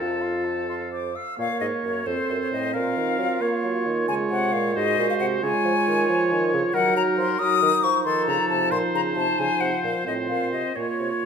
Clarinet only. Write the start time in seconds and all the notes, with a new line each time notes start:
0.00 C5
0.21 F5
0.45 C5
0.68 F5
0.92 C5
1.15 F5
1.39 A#4
2.06 A4
2.73 F4
4.75 F#4
5.42 F4
6.75 D#4
7.39 D#4
10.05 F4
10.76 F4